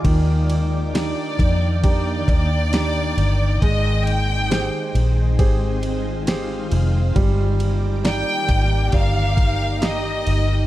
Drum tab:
RD |xxxxxxxx|xxxxxxxx|xxxxxxxx|
SD |--o---o-|--o---o-|--o---o-|
BD |o--ooo--|o---o---|o--ooo--|